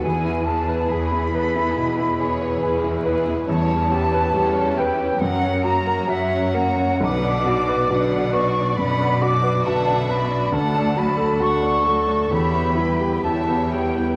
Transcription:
<<
  \new Staff \with { instrumentName = "Flute section" } { \time 4/4 \key e \major \tempo 4 = 69 gis''8 a''8 b''2~ b''8 r8 | \key b \minor a''4. g''8 fis''8 ais''8 e''8 fis''8 | d'''4. cis'''8 b''8 d'''8 a''8 b''8 | a''8 b''8 cis'''4 b''4 a''8 g''8 | }
  \new Staff \with { instrumentName = "Violin section" } { \time 4/4 \key e \major b'4 gis'8 a'8 b'8 cis''8 b'4 | \key b \minor cis''4 a'8 b'8 ais'4 cis''4 | b'8 d''2~ d''8 e''4 | d''4 a'4 cis''8 b'8 cis''4 | }
  \new Staff \with { instrumentName = "Violin section" } { \time 4/4 \key e \major <gis' b'>8 <gis' b'>4 <gis' b'>4 <gis' b'>4 <gis' b'>8 | \key b \minor <e' cis''>8 <g' b'>8 <e' cis''>8 <g' b'>8 <ais' fis''>8 <fis' ais''>8 <ais' fis''>8 <fis' ais''>8 | <b' fis''>8 <fis' d''>8 <b' fis''>8 <fis' d''>8 <b' fis''>8 <fis' d''>8 <b' fis''>8 <fis' d''>8 | <a' fis''>8 <fis' a''>8 <a' fis''>8 <fis' a''>8 <g' e''>8 <b' g''>8 <g' e''>8 <b' g''>8 | }
  \new Staff \with { instrumentName = "Grand piano" } { \time 4/4 \key e \major e,16 e'16 gis'16 b'16 gis'16 e'16 b'16 e'16 b,16 e'16 gis'16 b'16 gis'16 e'16 b'16 e'16 | \key b \minor e,16 cis'16 g'16 b'16 g'16 cis'16 b'16 cis'16 fis,16 cis'16 fis'16 ais'16 fis'16 cis'16 ais'16 cis'16 | b,,16 d'16 fis'16 b'16 fis'16 d'16 b'16 d'16 fis,16 d'16 fis'16 b'16 fis'16 d'16 b'16 d'16 | d,16 d'16 fis'16 a'16 fis'16 d'16 a'16 d'16 e,16 b16 e'16 g'16 e'16 b16 g'16 b16 | }
  \new Staff \with { instrumentName = "Viola section" } { \time 4/4 \key e \major <b e'>8 <b e'>4 <b e'>4 <b e'>4 <b e'>8 | \key b \minor <g cis'>8 <b e'>8 <g cis'>8 <b e'>8 <fis cis'>8 ais8 <fis cis'>8 ais8 | <d d'>8 <fis b>8 <d d'>8 <fis b>8 <d d'>8 <fis b>8 <d d'>8 <fis b>8 | <a d'>8 <fis a>8 <a d'>8 <fis a>8 <e g'>8 <g e'>8 <e g'>8 <g e'>8 | }
  \new Staff \with { instrumentName = "Cello section" } { \clef bass \time 4/4 \key e \major e,4 e,4 e,4 e,4 | \key b \minor e,4 e,4 fis,4 fis,4 | b,4 b,4 b,4 b,4 | d,4 d,4 e,4 e,4 | }
>>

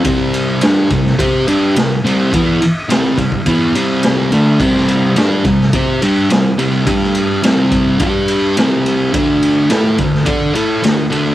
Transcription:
<<
  \new Staff \with { instrumentName = "Distorted electric guitar" } { \time 4/4 \key c \lydian \tempo 4 = 106 <c g c'>4 <g d' g'>8 <c g>8 <c' g' c''>8 <g d' g'>8 <c g>8 <c g c'>8 | <e b e'>8 r8 <c g c'>8 <c g>8 <e b e'>8 <c g c'>4 <d a d'>8 | <c g c'>4 <g d' g'>8 <c g>8 <c' g' c''>8 <g d' g'>8 <c g>8 <c g c'>8 | <g d' g'>4 <c g c'>4 <g d' g'>4 <c g c'>4 |
<d a d'>4 <a e' a'>8 <d a>8 <d' a' d''>8 <a e' a'>8 <d a>8 <d a d'>8 | }
  \new DrumStaff \with { instrumentName = "Drums" } \drummode { \time 4/4 <bd cymr>8 cymr8 <cymr sn>8 <bd cymr>16 sn16 <bd cymr>8 cymr8 <cymr sn>8 cymr8 | <bd cymr>8 cymr8 <cymr sn>8 <bd cymr>16 bd16 <bd cymr>8 cymr8 <cymr sn>8 cymr8 | <cymc bd>16 sn16 cymr8 <cymr sn>8 <bd cymr>16 sn16 <bd cymr>8 cymr8 <cymr sn>8 cymr8 | <bd cymr>16 sn16 cymr8 <cymr sn>8 <bd cymr>8 <bd cymr>8 cymr8 <cymr sn>8 cymr8 |
<bd cymr>8 cymr8 <cymr sn>8 <bd cymr>16 sn16 <bd cymr>8 cymr8 <cymr sn>8 cymr8 | }
>>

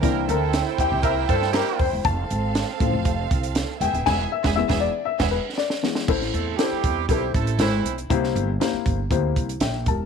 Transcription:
<<
  \new Staff \with { instrumentName = "Upright piano" } { \time 4/4 \key c \major \tempo 4 = 119 r8 bes'4 g''8 e''8 c''8 bes'8 c''8 | a''2~ a''8 r4 g''8 | gis''8 e''8 e''8 d''8 e''8 b'8 d''4 | <e' a' c''>8. r16 <e' a' c''>8. r16 <e' a' b' c''>8. r16 <e' a' c''>8. r16 |
<bes c' e' g' c''>8. r16 <bes c' e' g' c''>8. r16 <bes c' e' g' c''>8. r16 <e'' g''>8 <g' bes' a''>8 | }
  \new Staff \with { instrumentName = "Upright piano" } { \clef bass \time 4/4 \key c \major <e bes d'>8 r2. r8 | r4. <f a c'>8 r2 | r4 <e gis b>8 r2 <e gis b>8 | a,4. r2 r8 |
c4. r2 r8 | }
  \new Staff \with { instrumentName = "Violin section" } { \time 4/4 \key c \major <e' c'' g''>1 | <c' a' f''>2.~ <c' a' f''>8 <b gis' e''>8 | <b gis' e''>8 r16 <b gis' e''>8 <b gis' e''>8 r8 <b gis' e''>8 r4 r16 | r1 |
r1 | }
  \new Staff \with { instrumentName = "Horn section" } { \time 4/4 \key c \major <bes e' g' bes'>8 <a c' e' a'>4 <g c' e' g'>8 <bes e' g' bes'>8 <a d' f' a'>8 <g c' e' g'>8. r16 | r1 | r1 | r8 <a c' e' a'>8 <g c' e' g'>4 <g c' e' g'>8 <a c' e' a'>8 <e a c' e'>8. r16 |
r1 | }
  \new Staff \with { instrumentName = "Upright bass" } { \clef bass \time 4/4 \key c \major c,8 d,8. r16 e,16 c,8. g,8. r16 f,16 e,,16 | f,,8 gis,,8. r16 a,,16 f,,8. c,8. r16 e,,16 dis,,16 | e,,8 r16 e,,8 e,,8 r8 e,,8 r4 r16 | a,,8 e,8 r8 e,8 b,,8 a,,8 gis,,8 b,,8 |
c,8 g,,8 r8 g,,8 d,8 c,8 bes,,8 e,,8 | }
  \new DrumStaff \with { instrumentName = "Drums" } \drummode { \time 4/4 <hh bd>8 hh8 <hh sn>8 <hh bd>8 <hh bd>8 <hh bd>16 sn16 <hh sn>8 <hho bd>8 | <hh bd>8 hh8 <hh sn>16 sn16 <hh bd>8 <hh bd>8 <hh bd>16 hh16 <hh sn>8 hh16 hh16 | <cymc bd sn>8. <bd sn>16 r16 <bd sn>8. r16 <cymc bd sn>8. sn16 sn16 sn16 sn16 | <cymc bd>16 sn16 hh8 <hh sn>8 <hh bd>8 <hh bd>8 <hh bd>16 hh16 <hh sn>8 hh16 hh16 |
<hh bd>16 sn16 hh8 <hh sn>8 <hh bd>8 <hh bd>8 <hh bd>16 hh16 <hh sn>8 <hh bd>8 | }
>>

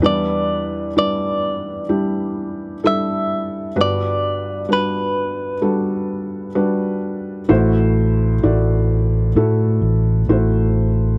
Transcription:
<<
  \new Staff \with { instrumentName = "Clean electric guitar" } { \time 4/4 \key e \minor \tempo 4 = 64 d''4 d''2 e''4 | d''4 b'2~ b'8 r8 | r1 | }
  \new Staff \with { instrumentName = "Felt piano" } { \time 4/4 \key e \minor <g d' e' b'>4 <g d' e' b'>4 <g d' e' g'>4 <g d' e' a'>4 | <g d' fis' b'>4 <g d' fis' b'>4 <g d' fis' a'>4 <g d' fis' b'>4 | <a e' fis' c''>4 <a e' fis' d''>4 <a e' fis' a'>4 <a e' fis' c''>4 | }
  \new Staff \with { instrumentName = "Felt piano" } { \clef bass \time 4/4 \key e \minor <e, e>1 | <g,, g,>1 | <a,, a,>1 | }
  \new Staff \with { instrumentName = "Fingered electric bass" } { \clef bass \time 4/4 \key e \minor r1 | r1 | a,,4 a,,4 a,8 a,,8 a,,4 | }
>>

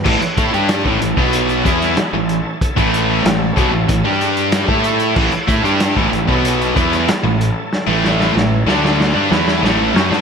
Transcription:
<<
  \new Staff \with { instrumentName = "Tonewheel organ" } { \time 4/4 \key a \mixolydian \tempo 4 = 94 <e' a' cis'' a''>1 | <a' cis'' e'' a''>2~ <a' cis'' e'' a''>16 <g' d'' g''>4 <e' a' cis'' a''>8.~ | <e' a' cis'' a''>2.~ <e' a' cis'' a''>16 <e' a' cis'' a''>8.~ | <e' a' cis'' a''>2.~ <e' a' cis'' a''>16 <e' a' cis'' a''>8. | }
  \new Staff \with { instrumentName = "Distorted electric guitar" } { \clef bass \time 4/4 \key a \mixolydian <a, e>16 r16 <a e'>16 <g d' g'>8 <a, e>16 <a, e>16 <b, fis b>8. <e b e'>8 r16 <a, e>8 r16 | r16 <a, e a>8. <a, e>8 <b, fis>16 <a, e>16 <a, e>16 <g d' g'>4 <a e' a'>8. | <a, e>16 r16 <a e'>16 <g d' g'>8 <a, e>16 <a, e>16 <b, fis b>8. <e b e'>8 r16 <a, e>8 r16 | r16 <a, e a>8. <a, e>8 <d a d'>8. <g d'>16 <e b e'>8 <a, e a>8 <fis cis'>16 <g d'>16 | }
  \new Staff \with { instrumentName = "Distorted electric guitar" } { \clef bass \time 4/4 \key a \mixolydian <a, e>16 r16 <a e'>16 <g d' g'>8 <a, e>16 <a, e>16 <b, fis b>8. <e b e'>8 r16 <a, e>8 r16 | r16 <a, e a>8. <a, e>8 <b, fis>16 <a, e>16 <a, e>16 <g d' g'>4 <a e' a'>8. | <a, e>16 r16 <a e'>16 <g d' g'>8 <a, e>16 <a, e>16 <b, fis b>8. <e b e'>8 r16 <a, e>8 r16 | r16 <a, e a>8. <a, e>8 <d a d'>8. <g d'>16 <e b e'>8 <a, e a>8 <fis cis'>16 <g d'>16 | }
  \new Staff \with { instrumentName = "Overdriven electric guitar" } { \clef bass \time 4/4 \key a \mixolydian <a, e>16 r16 <a e'>16 <g d' g'>8 <a, e>16 <a, e>16 <b, fis b>8. <e b e'>8 r16 <a, e>8 r16 | r16 <a, e a>8. <a, e>8 <b, fis>16 <a, e>16 <a, e>16 <g d' g'>4 <a e' a'>8. | <a, e>16 r16 <a e'>16 <g d' g'>8 <a, e>16 <a, e>16 <b, fis b>8. <e b e'>8 r16 <a, e>8 r16 | r16 <a, e a>8. <a, e>8 <d a d'>8. <g d'>16 <e b e'>8 <a, e a>8 <fis cis'>16 <g d'>16 | }
  \new Staff \with { instrumentName = "Fingered electric bass" } { \clef bass \time 4/4 \key a \mixolydian a,,16 r16 a,16 g,8 a,,16 a,,16 b,,8. e,8 r16 a,,8 r16 | r16 a,,8. a,,8 b,,16 a,,16 a,,16 g,4 a,8. | a,,16 r16 a,16 g,8 a,,16 a,,16 b,,8. e,8 r16 a,,8 r16 | r16 a,,8. a,,8 d,8. g,16 e,8 a,,8 fis,16 g,16 | }
  \new DrumStaff \with { instrumentName = "Drums" } \drummode { \time 4/4 <cymc bd>16 hh16 <hh bd>16 hh16 <hh sn>16 bd16 hh16 bd16 hh16 hh16 <hh bd sn>16 <hh sn>16 <hh sn>8 hh8 | <hh bd>16 <hh bd>16 hh8 <hh sn>8 <hh bd>8 <hh bd>8 hh16 hh16 <hh sn>16 bd16 hh16 hh16 | <cymc bd>16 hh16 <hh bd>16 hh16 <hh sn>16 bd16 hh16 bd16 hh16 hh16 <hh bd sn>16 <hh sn>16 <hh sn>8 hh8 | sn8 sn16 sn16 sn8 sn16 sn16 sn8 sn16 sn16 sn8 sn16 sn16 | }
>>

